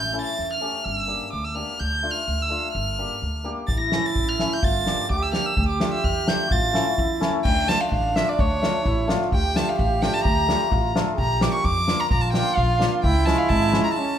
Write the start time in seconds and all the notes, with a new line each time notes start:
Already playing: A1 G6
0.13 A3 C#4 E4
0.22 A6
0.39 E2
0.54 F6
0.61 A3 C#4 G4
0.85 G1 F6
0.96 E6
1.08 A#3 D4 G4
1.33 D2 D6
1.44 E6
1.55 A#3 D4 G4 F6
1.79 D2 G6
2.03 A3 D4 F4
2.11 F6
2.27 D2
2.42 E6
2.50 A3 D4 F4
2.73 G1 F6
2.99 A#3 D4 G4
3.22 D2
3.44 A#3 D4 G4
3.67 A1 E4 A6, kick
3.80 A#6
3.91 A3 C#4 E4, snare
4.05 A6
4.16 A1, kick
4.28 F6
4.39 A3 C#4 E4, snare
4.53 G6
4.61 G1 F4 A6, kick
4.86 A#3 D4 G4, snare
5.09 D2 G4 D6, kick
5.22 E6
5.32 A#3 D4 G4 F6, snare
5.46 E6
5.57 D2 G4, kick
5.69 D6
5.80 A3 D4 F4, snare
5.93 E6, snare
6.04 E2 F6, kick
6.26 A3 D4 F4 G6, snare
6.50 A1 F4 A6, kick
6.73 A3 C#4 E4, snare
6.98 E2 E4, kick
7.21 A3 C#4 E4, snare
7.44 D2 D4 G5, kick, crash
7.67 A3 D4 F4 A5, snare
7.81 F5
7.92 A1 F5, kick
8.15 A3 D4 F4 E5, snare
8.29 D5
8.39 D2 C#5, kick
8.62 A3 D4 F4, snare
8.86 A1 E4, kick
9.07 A3 D4 F4, snare
9.21 snare
9.32 D2 G4 G5, kick
9.55 A3 D4 F4 A5, snare
9.69 F5
9.78 A1 F5, kick
10.02 A3 D4 F4 G5, snare
10.13 A5, snare
10.24 D2 A#5, kick
10.48 A3 D4 F4, snare
10.70 A1 F4, kick
10.95 A3 D4 F4 A4, snare
11.17 A#1 G4 A#5, kick
11.41 A#3 D4 F4 D6, snare
11.54 C#6
11.64 F2 D6, kick
11.87 A#3 D4 F4, snare
12.00 A#5
12.11 A#1 F4 A#5, kick
12.21 A5
12.33 A#3 D4 F4 G5, snare
12.56 A#1 F5, kick
12.79 A#3 D4 F4, snare
13.03 C#2 E4 G5, kick
13.26 G#3 C#4 F4 A5, snare
13.38 F5
13.49 G#1 A5, kick
13.72 G#3 C#4 F4, snare
13.83 A#5
13.94 C#4 A5